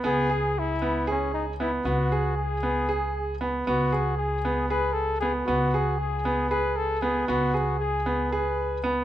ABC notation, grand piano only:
X:1
M:7/8
L:1/8
Q:1/4=116
K:C#m
V:1 name="Grand piano"
B, G2 B, G2 B, | B, G2 B, G2 B, | B, G2 B, G2 B, | B, G2 B, G2 B, |
B, G2 B, G2 B, |]